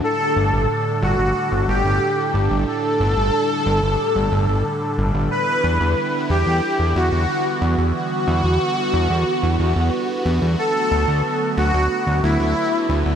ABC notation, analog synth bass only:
X:1
M:4/4
L:1/16
Q:1/4=91
K:G
V:1 name="Analog synth bass" clef=bass
z2 G,,, G,,, z2 G,,, G,,, z G,,, G,,, G,,, z2 G,,, G,,, | z2 G,,, G,,, z2 G,,, G,,, z G,,, G,,, G,,, z2 G,,, G,,, | z2 E,, E,, z2 E,, E,, z E,, E,, E,, z2 E,, E,, | z2 E,, E,, z2 E,, E,, z E,, E,, E,, z2 E,, E,, |
z2 D,, D,, z2 D,, D,, z D,, D,, D,, z2 D,, D,, |]